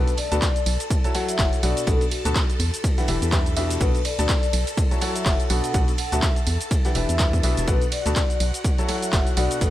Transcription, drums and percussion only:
0.07 closed hi-hat, shaker
0.17 open hi-hat, ride
0.32 closed hi-hat, shaker
0.42 kick, snare, clap, closed hi-hat, ride, shaker
0.56 closed hi-hat, shaker
0.66 open hi-hat, ride
0.80 closed hi-hat, ride, shaker
0.90 kick, closed hi-hat, ride, shaker
1.04 closed hi-hat, shaker
1.15 open hi-hat, ride
1.28 closed hi-hat, shaker
1.39 kick, snare, clap, closed hi-hat, ride, shaker
1.53 closed hi-hat, shaker
1.63 open hi-hat, ride
1.77 closed hi-hat, shaker
1.87 kick, closed hi-hat, ride, shaker
2.01 closed hi-hat, ride, shaker
2.11 open hi-hat, ride
2.25 closed hi-hat, shaker
2.35 kick, snare, clap, closed hi-hat, ride, shaker
2.50 closed hi-hat, shaker
2.59 open hi-hat, ride
2.74 closed hi-hat, shaker
2.84 kick, closed hi-hat, ride, shaker
2.98 snare, closed hi-hat, shaker
3.08 open hi-hat, ride
3.22 closed hi-hat, shaker
3.32 kick, snare, clap, closed hi-hat, ride, shaker
3.46 closed hi-hat, shaker
3.56 open hi-hat, ride
3.70 snare, closed hi-hat, shaker
3.81 kick, closed hi-hat, ride, shaker
3.95 closed hi-hat, shaker
4.05 open hi-hat, ride
4.19 closed hi-hat, shaker
4.29 kick, snare, clap, closed hi-hat, ride, shaker
4.43 closed hi-hat, shaker
4.53 open hi-hat, ride
4.67 closed hi-hat, ride, shaker
4.77 kick, closed hi-hat, ride, shaker
4.91 closed hi-hat, shaker
5.01 open hi-hat, ride
5.16 closed hi-hat, shaker
5.25 kick, snare, clap, closed hi-hat, ride, shaker
5.40 closed hi-hat, shaker
5.50 open hi-hat, ride
5.64 closed hi-hat, shaker
5.74 kick, closed hi-hat, ride, shaker
5.88 closed hi-hat, ride, shaker
5.98 open hi-hat, ride
6.12 closed hi-hat, shaker
6.22 kick, snare, clap, closed hi-hat, ride, shaker
6.36 closed hi-hat, shaker
6.47 open hi-hat, ride
6.61 closed hi-hat, shaker
6.71 kick, closed hi-hat, ride, shaker
6.84 snare, closed hi-hat, shaker
6.95 open hi-hat, ride
7.09 closed hi-hat, shaker
7.18 kick, snare, clap, closed hi-hat, ride, shaker
7.33 kick, closed hi-hat, shaker
7.43 open hi-hat, ride
7.57 snare, closed hi-hat, shaker
7.67 kick, closed hi-hat, ride, shaker
7.82 closed hi-hat, shaker
7.92 open hi-hat, ride
8.06 closed hi-hat, shaker
8.16 kick, snare, clap, closed hi-hat, ride, shaker
8.30 closed hi-hat, shaker
8.40 open hi-hat, ride
8.54 closed hi-hat, ride, shaker
8.64 kick, closed hi-hat, ride, shaker
8.78 closed hi-hat, shaker
8.88 open hi-hat, ride
9.02 closed hi-hat, shaker
9.13 kick, snare, clap, closed hi-hat, ride, shaker
9.27 closed hi-hat, shaker
9.37 open hi-hat, ride
9.51 closed hi-hat, shaker
9.61 kick, closed hi-hat, ride, shaker

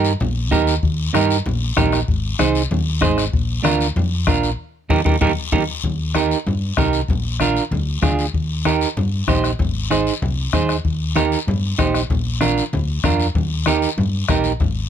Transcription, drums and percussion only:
0.04 short guiro
0.20 high conga, low conga, long guiro
0.52 high conga, low conga, short guiro
0.67 short guiro
0.83 bombo low, high conga, long guiro
1.14 bombo rim, high conga, short guiro
1.30 short guiro
1.46 high conga, low conga, long guiro
1.77 bombo low, bombo rim, high conga, low conga, short guiro
1.92 bombo rim, short guiro
2.08 bombo low, high conga, long guiro
2.39 bombo rim, high conga, short guiro
2.55 short guiro
2.71 high conga, low conga, long guiro
3.02 bombo low, bombo rim, high conga, low conga, short guiro
3.18 bombo rim, short guiro
3.33 bombo low, high conga, long guiro
3.65 bombo rim, high conga, short guiro
3.81 short guiro
3.96 high conga, low conga, long guiro
4.27 bombo low, bombo rim, high conga, short guiro
4.43 short guiro
4.90 bombo low, low conga, long guiro
5.06 bombo low, low conga, long guiro
5.21 bombo low, low conga, long guiro
5.52 bombo low, low conga, long guiro
5.84 bombo low, high conga, low conga, long guiro
6.15 bombo rim, high conga, short guiro
6.31 short guiro
6.47 high conga, low conga, long guiro
6.77 bombo low, bombo rim, high conga, low conga, short guiro
6.93 short guiro
7.08 bombo low, high conga, low conga, long guiro
7.40 bombo rim, high conga, short guiro
7.56 short guiro
7.72 high conga, low conga, long guiro
8.03 bombo low, bombo rim, high conga, low conga, short guiro
8.19 short guiro
8.34 bombo low, high conga, long guiro
8.65 bombo rim, high conga, short guiro
8.81 short guiro
8.97 high conga, low conga, long guiro
9.28 bombo low, bombo rim, high conga, low conga, short guiro
9.44 bombo rim, short guiro
9.59 bombo low, high conga, low conga, long guiro
9.91 bombo rim, high conga, short guiro
10.07 short guiro
10.22 high conga, low conga, long guiro
10.53 bombo low, bombo rim, high conga, low conga, short guiro
10.69 bombo rim, short guiro
10.85 bombo low, high conga, long guiro
11.16 bombo rim, high conga, short guiro
11.32 short guiro
11.48 high conga, low conga, long guiro
11.79 bombo low, bombo rim, high conga, short guiro
11.94 bombo rim, short guiro
12.10 bombo low, high conga, low conga, long guiro
12.41 bombo rim, high conga, short guiro
12.57 short guiro
12.73 high conga, low conga, long guiro
13.04 bombo low, bombo rim, high conga, short guiro
13.20 short guiro
13.35 bombo low, high conga, low conga, long guiro
13.66 bombo rim, high conga, short guiro
13.82 short guiro
13.98 high conga, low conga, long guiro
14.28 bombo low, bombo rim, high conga, low conga, short guiro
14.44 short guiro
14.60 bombo low, high conga, low conga, long guiro

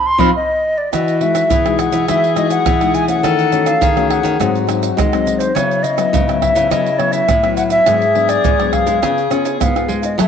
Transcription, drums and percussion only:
0.19 surdo
0.93 pandeiro, tamborim, shaker, surdo
1.08 pandeiro, shaker
1.21 pandeiro
1.35 pandeiro, tamborim, shaker
1.50 pandeiro, shaker, surdo
1.66 pandeiro, tamborim, shaker
1.79 pandeiro, tamborim, shaker
1.92 pandeiro, shaker
2.08 pandeiro, tamborim, shaker, surdo
2.24 pandeiro, shaker
2.36 pandeiro, tamborim, shaker
2.50 pandeiro, shaker
2.66 pandeiro, tamborim, shaker, surdo
2.81 pandeiro, tamborim, shaker
2.94 pandeiro, shaker
3.08 pandeiro, shaker
3.24 pandeiro, tamborim, shaker, surdo
3.39 pandeiro, shaker
3.52 pandeiro, shaker
3.66 pandeiro, tamborim, shaker
3.82 pandeiro, shaker, surdo
3.97 pandeiro, tamborim, shaker
4.10 pandeiro, tamborim
4.25 pandeiro, shaker
4.41 pandeiro, tamborim, shaker, surdo
4.55 pandeiro, shaker
4.69 pandeiro, tamborim, shaker
4.83 pandeiro, shaker
4.98 pandeiro, tamborim, shaker, surdo
5.13 pandeiro, tamborim, shaker
5.27 pandeiro, shaker
5.40 pandeiro, shaker
5.56 pandeiro, tamborim, shaker, surdo
5.71 pandeiro, shaker
5.84 pandeiro, shaker
5.98 pandeiro, tamborim, shaker
6.14 pandeiro, shaker, surdo
6.29 pandeiro, tamborim, shaker
6.42 pandeiro, tamborim, surdo
6.56 pandeiro, shaker
6.71 pandeiro, tamborim, shaker, surdo
6.86 pandeiro, shaker
6.99 pandeiro, tamborim
7.13 pandeiro, shaker
7.29 pandeiro, tamborim, shaker, surdo
7.44 pandeiro, tamborim, shaker
7.57 pandeiro, shaker
7.70 pandeiro, shaker
7.86 pandeiro, tamborim, shaker, surdo
8.02 pandeiro, shaker
8.15 pandeiro
8.29 pandeiro, tamborim, shaker
8.45 pandeiro, shaker, surdo
8.60 pandeiro, tamborim, shaker
8.73 pandeiro, tamborim, surdo
8.87 pandeiro, shaker
9.03 pandeiro, tamborim, shaker, surdo
9.18 pandeiro, shaker
9.31 pandeiro, tamborim, shaker
9.45 pandeiro, shaker
9.61 pandeiro, tamborim, shaker, surdo
9.76 pandeiro, tamborim, shaker
9.89 pandeiro
10.03 pandeiro, shaker
10.19 pandeiro, tamborim, shaker, surdo

